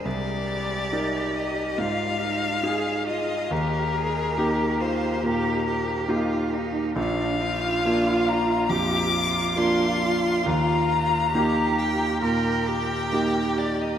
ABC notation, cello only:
X:1
M:4/4
L:1/8
Q:1/4=69
K:Eb
V:1 name="Cello"
G4 F E A F | G A G F G G F E | D F3 G F3- | F2 G2 B G3 |]